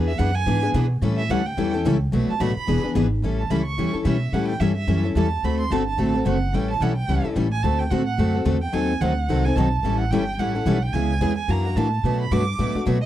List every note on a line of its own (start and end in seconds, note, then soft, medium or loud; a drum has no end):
0.00 0.19 E2 medium
0.00 0.11 E3 medium
0.00 0.11 B3 medium
0.00 0.11 D4 medium
0.00 0.11 G#4 medium
0.00 0.11 B4 medium
0.07 0.19 E5 medium
0.18 0.45 F#2 loud
0.18 0.30 E3 medium
0.18 0.30 B3 medium
0.18 0.30 D4 medium
0.18 0.30 G#4 medium
0.18 0.31 B4 loud
0.18 0.37 F#5 loud
0.35 0.63 G#5 loud
0.46 0.73 G#2 medium
0.46 0.62 E3 medium
0.46 0.63 B3 medium
0.46 0.62 D4 medium
0.46 0.62 G#4 medium
0.46 0.67 B4 medium
0.63 0.73 B3 medium
0.63 0.73 D4 medium
0.63 0.74 G#4 medium
0.74 1.01 B2 loud
0.74 0.85 E3 medium
0.74 0.85 B3 medium
0.74 0.85 D4 loud
0.74 0.85 G#4 loud
0.74 0.86 B4 loud
1.02 1.29 A2 loud
1.02 1.21 E3 medium
1.02 1.21 G3 medium
1.02 1.21 C#4 medium
1.02 1.21 E4 medium
1.02 1.22 A4 medium
1.17 1.32 E5 medium
1.29 1.56 D2 medium
1.29 1.40 E3 medium
1.29 1.41 G3 medium
1.29 1.41 C#4 medium
1.29 1.41 E4 medium
1.29 1.41 A4 loud
1.29 1.48 F#5 medium
1.46 1.74 G5 medium
1.57 1.84 E2 medium
1.57 1.73 E3 medium
1.57 1.73 G3 medium
1.57 1.73 C#4 medium
1.57 1.73 E4 medium
1.57 1.73 A4 medium
1.74 1.85 C#4 soft
1.74 1.85 E4 medium
1.74 1.85 A4 medium
1.85 2.12 C#2 loud
1.85 1.96 E3 loud
1.85 1.96 G3 loud
1.85 1.96 C#4 loud
1.85 1.96 E4 loud
1.85 1.96 A4 loud
2.12 2.27 B1 medium
2.12 2.31 B2 medium
2.12 2.32 F#3 medium
2.12 2.32 A3 medium
2.12 2.32 D4 medium
2.12 2.32 F#4 medium
2.12 2.32 B4 medium
2.29 2.42 A5 medium
2.29 muted upright bass stroke soft
2.40 2.55 A1 loud
2.40 2.51 B2 medium
2.40 2.51 F#3 medium
2.40 2.51 A3 medium
2.40 2.51 D4 loud
2.40 2.51 F#4 medium
2.40 2.51 B4 loud
2.40 2.56 B5 medium
2.56 2.82 B5 medium
2.56 muted upright bass stroke soft
2.67 2.83 E1 medium
2.67 2.83 E3 medium
2.67 2.83 B3 medium
2.67 2.83 D4 medium
2.67 2.83 G#4 medium
2.67 2.87 B4 medium
2.84 2.94 B3 soft
2.84 2.95 D4 medium
2.84 2.95 G#4 medium
2.84 muted upright bass stroke soft
2.95 3.22 G#1 loud
2.95 3.06 E3 medium
2.95 3.06 B3 loud
2.95 3.06 D4 medium
2.95 3.06 G#4 loud
2.95 3.07 B4 loud
3.22 3.49 A1 medium
3.22 3.42 E3 medium
3.22 3.42 G3 medium
3.22 3.42 C#4 medium
3.22 3.42 E4 medium
3.22 3.43 A4 medium
3.38 3.52 A5 medium
3.50 3.77 C#2 medium
3.50 3.61 E3 medium
3.50 3.61 G3 medium
3.50 3.61 C#4 medium
3.50 3.61 E4 medium
3.50 3.61 A4 loud
3.50 3.65 B5 medium
3.66 3.92 C#6 medium
3.78 3.93 E2 medium
3.78 3.93 E3 medium
3.78 3.94 G3 medium
3.78 3.94 C#4 medium
3.78 3.93 E4 medium
3.78 3.92 A4 medium
3.93 4.04 C#4 soft
3.93 4.04 E4 soft
3.93 4.05 A4 medium
3.93 muted upright bass stroke soft
4.04 4.32 B2 loud
4.04 4.16 E3 medium
4.04 4.16 G3 medium
4.04 4.16 C#4 medium
4.04 4.16 E4 medium
4.04 4.16 A4 medium
4.04 4.35 E5 medium
4.32 4.59 A2 medium
4.32 4.52 E3 medium
4.32 4.52 G3 medium
4.32 4.52 C#4 medium
4.32 4.52 E4 medium
4.32 4.52 A4 medium
4.32 4.47 F#5 medium
4.48 4.61 G5 medium
4.60 4.87 G2 medium
4.60 4.71 E3 medium
4.60 4.71 G3 medium
4.60 4.71 C#4 medium
4.60 4.71 E4 medium
4.60 4.71 A4 medium
4.60 4.75 E5 medium
4.75 5.02 E5 medium
4.87 5.14 F#2 medium
4.87 5.03 E3 medium
4.87 5.03 G3 medium
4.87 5.03 C#4 medium
4.87 5.03 E4 medium
4.87 5.02 A4 medium
5.04 5.16 C#4 soft
5.04 5.15 E4 soft
5.04 5.15 A4 soft
5.15 5.42 E2 loud
5.15 5.27 E3 medium
5.15 5.27 G3 medium
5.15 5.27 C#4 medium
5.15 5.27 E4 loud
5.15 5.27 A4 medium
5.15 5.46 A5 medium
5.43 5.70 D2 medium
5.43 5.62 D3 medium
5.43 5.62 A3 medium
5.43 5.63 C4 medium
5.43 5.63 F#4 medium
5.43 5.63 A4 medium
5.43 5.59 B5 medium
5.60 5.73 C6 medium
5.70 5.97 G1 medium
5.70 5.82 D3 medium
5.70 5.82 A3 medium
5.70 5.82 C4 loud
5.70 5.82 F#4 loud
5.70 5.82 A4 loud
5.70 5.87 A5 medium
5.88 6.13 A5 medium
5.98 6.24 A1 medium
5.98 6.13 D3 medium
5.98 6.14 A3 medium
5.98 6.14 C4 medium
5.98 6.14 F#4 medium
5.98 6.13 A4 medium
6.14 6.25 C4 soft
6.14 6.25 F#4 soft
6.14 6.25 A4 medium
6.25 6.52 F#1 loud
6.25 6.36 D3 medium
6.25 6.36 A3 medium
6.25 6.36 C4 medium
6.25 6.37 F#4 medium
6.25 6.37 A4 medium
6.25 6.56 F#5 medium
6.53 6.79 A1 medium
6.53 6.72 E3 medium
6.53 6.73 G3 medium
6.53 6.73 C#4 medium
6.53 6.73 E4 medium
6.53 6.73 A4 medium
6.53 6.70 G5 medium
6.71 6.83 A5 medium
6.80 7.07 B1 medium
6.80 6.92 E3 medium
6.80 6.92 G3 medium
6.80 6.92 C#4 loud
6.80 6.92 E4 medium
6.80 6.92 A4 medium
6.80 6.96 F#5 medium
6.96 7.22 G5 medium
7.08 7.23 C#2 medium
7.08 7.24 E3 medium
7.08 7.24 G3 medium
7.08 7.24 C#4 medium
7.08 7.24 E4 medium
7.08 7.23 A4 medium
7.24 7.35 C#4 soft
7.24 7.36 E4 soft
7.24 7.36 A4 medium
7.24 muted upright bass stroke soft
7.36 7.63 A1 loud
7.36 7.46 E3 medium
7.36 7.47 G3 medium
7.36 7.47 C#4 medium
7.36 7.47 E4 medium
7.36 7.47 A4 medium
7.52 7.64 G#5 medium
7.63 7.90 D2 medium
7.63 7.82 D3 medium
7.63 7.83 A3 medium
7.63 7.83 C4 medium
7.63 7.83 F#4 medium
7.63 7.83 A4 medium
7.63 7.80 A5 medium
7.79 7.92 G5 medium
7.90 8.18 A2 medium
7.90 8.01 D3 medium
7.90 8.02 A3 medium
7.90 8.02 C4 medium
7.90 8.02 F#4 loud
7.90 8.02 A4 medium
7.90 8.06 F#5 medium
8.06 8.32 F#5 medium
8.18 8.45 F#2 medium
8.18 8.34 D3 medium
8.18 8.34 A3 medium
8.18 8.34 C4 medium
8.18 8.34 F#4 medium
8.18 8.33 A4 medium
8.34 8.45 C4 soft
8.34 8.45 F#4 soft
8.34 8.45 A4 medium
8.45 8.72 E2 loud
8.45 8.56 D3 medium
8.45 8.56 A3 medium
8.45 8.56 C4 medium
8.45 8.57 F#4 medium
8.45 8.57 A4 medium
8.62 8.75 G5 loud
8.73 9.00 D#2 medium
8.73 8.92 D#3 medium
8.73 8.92 F#3 medium
8.73 8.92 C4 medium
8.73 8.92 D#4 medium
8.73 8.92 A4 medium
8.73 9.02 G#5 loud
9.01 9.28 D2 medium
9.01 9.12 D#3 medium
9.01 9.12 F#3 medium
9.01 9.12 C4 medium
9.01 9.12 D#4 medium
9.01 9.13 A4 medium
9.01 9.46 F#5 medium
9.29 9.55 C2 medium
9.29 9.44 D#3 medium
9.29 9.45 F#3 medium
9.29 9.45 C4 medium
9.29 9.45 D#4 medium
9.29 9.44 A4 medium
9.45 9.57 C4 medium
9.45 9.57 D#4 soft
9.45 9.56 A4 medium
9.45 9.58 G#5 loud
9.56 9.82 B1 loud
9.56 9.67 D#3 medium
9.56 9.68 F#3 loud
9.56 9.68 C4 medium
9.56 9.68 D#4 medium
9.56 9.68 A4 loud
9.56 9.99 A5 medium
9.83 10.10 A1 medium
9.83 10.03 E3 medium
9.83 10.03 G3 medium
9.83 10.03 C#4 medium
9.83 10.03 E4 medium
9.83 10.03 A4 medium
9.99 10.12 F#5 medium
10.11 10.37 G1 medium
10.11 10.22 E3 medium
10.11 10.22 G3 medium
10.11 10.23 C#4 medium
10.11 10.23 E4 loud
10.11 10.23 A4 loud
10.11 10.41 G5 loud
10.38 10.65 A1 medium
10.38 10.54 E3 medium
10.38 10.55 G3 medium
10.38 10.55 C#4 medium
10.38 10.55 E4 medium
10.38 10.54 A4 medium
10.38 10.84 F#5 medium
10.55 10.66 C#4 soft
10.55 10.66 E4 soft
10.55 10.66 A4 medium
10.66 10.92 B1 loud
10.66 10.77 E3 medium
10.66 10.77 G3 medium
10.66 10.77 C#4 medium
10.66 10.77 E4 loud
10.66 10.77 A4 medium
10.83 10.95 G5 loud
10.93 11.20 C#2 medium
10.93 11.13 C#3 medium
10.93 11.13 E3 medium
10.93 11.13 G#3 medium
10.93 11.13 B3 medium
10.93 11.13 C#4 medium
10.93 11.13 E4 medium
10.93 11.13 G#4 medium
10.93 11.37 G#5 medium
11.21 11.47 E2 medium
11.21 11.32 C#3 medium
11.21 11.32 E3 medium
11.21 11.32 G#3 medium
11.21 11.32 B3 loud
11.21 11.32 C#4 medium
11.21 11.32 E4 loud
11.21 11.32 G#4 medium
11.37 11.52 G#5 medium
11.48 11.75 F#2 medium
11.48 11.64 E3 medium
11.48 11.67 F#3 medium
11.48 11.65 A#3 medium
11.48 11.64 D4 medium
11.48 11.68 E4 medium
11.48 11.63 F#4 medium
11.48 11.68 A#4 medium
11.48 11.78 A#5 medium
11.65 11.76 A#3 soft
11.65 11.76 D4 medium
11.65 11.76 F#4 medium
11.76 12.03 A2 loud
11.76 11.87 E3 medium
11.76 11.87 F#3 medium
11.76 11.87 A#3 medium
11.76 11.88 D4 loud
11.76 11.87 E4 medium
11.76 11.88 F#4 medium
11.76 11.87 A#4 medium
11.76 12.20 A5 medium
12.03 12.30 B2 medium
12.03 12.23 B2 medium
12.03 12.23 F#3 medium
12.03 12.24 A3 medium
12.03 12.24 D4 medium
12.03 12.24 F#4 medium
12.03 12.23 B4 medium
12.21 12.33 B5 medium
12.31 12.58 G2 medium
12.31 12.42 B2 medium
12.31 12.42 F#3 medium
12.31 12.42 A3 medium
12.31 12.43 D4 medium
12.31 12.43 F#4 medium
12.31 12.43 B4 medium
12.31 12.75 D6 medium
12.59 12.74 A2 medium
12.59 12.74 B2 medium
12.59 12.75 F#3 medium
12.59 12.75 A3 medium
12.59 12.75 D4 medium
12.59 12.74 F#4 medium
12.59 12.78 B4 medium
12.75 12.86 A3 soft
12.75 12.86 D4 soft
12.75 12.86 F#4 medium
12.75 muted upright bass stroke soft
12.86 13.06 B2 loud
12.86 12.97 B2 medium
12.86 12.97 F#3 loud
12.86 12.97 A3 medium
12.86 12.97 D4 medium
12.86 12.97 F#4 medium
12.86 12.97 B4 loud
13.02 13.06 D#5 loud